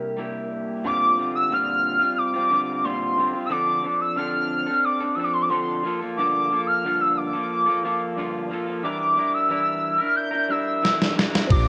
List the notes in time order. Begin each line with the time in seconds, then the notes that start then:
Already playing: C3 G3 A#3 D4 E4 G4 A#4
0.17 G3 A#3 E4 G4
0.84 A#2 D3 G3 C4 F4 D6
1.16 D3 G3 C4 F4
1.35 E6
1.50 A#2 D3 G3 C4 F4 F6
1.99 C4 F4
2.03 G3
2.18 D6
2.34 G3 C4 F4
2.50 D3 G3 C4
2.54 F4
2.84 A#2 D3 G3 C4 F4 C6
3.17 D3 G3 C4 F4
3.33 G3 C4 F4
3.45 E6
3.50 D3 F3 C4 D4 A4 D6
3.83 F3 C4 D4 A4
4.01 E6
4.16 D3 F3 C4 D4 A4 F6
4.66 C4 D4 A4
4.84 D6
5.00 C4 D4 A4
5.15 F3 C4 E6
5.19 D4 A4
5.24 D6
5.33 C6
5.42 D6
5.49 D3 F3 C4 D4 A4 C6
5.83 F3 A#3 F4 A4
5.99 A#3 F4 A4
6.03 F3
6.17 G2 D3 F3 A#3 F4 A4 D6
6.50 F3 A#3 F4 A4
6.67 F6
6.84 G2 D3 F3 A#3 F4 A4
7.01 E6
7.17 D6
7.33 F3 A#3 F4 A4
7.66 F3 A#3 F4 A4
7.83 F3 A#3 F4 A4
8.17 G2 D3 F3 A#3 F4 A4
8.50 F3 A#3 F4 A4
8.66 F3 A#3 F4 A4
8.83 E3 G3 D4 E4 A#4 D6
9.16 G3 D4 E4 A#4
9.34 E6
9.49 E3 G3 D4 E4 A#4
9.98 D4 E4 A#4 F6
10.16 G6
10.31 E4 A#4
10.35 D4
10.49 G3 D4 E4 A#4 E6
10.83 E3 G3 D4 E4 A#4, snare
11.02 snare
11.15 G3 D4 E4 A#4, snare
11.33 D4 E4 A#4, snare
11.47 A#1 A#2 D3 G3 C4 D4 F4 D6, kick, ride
11.51 G4 A#4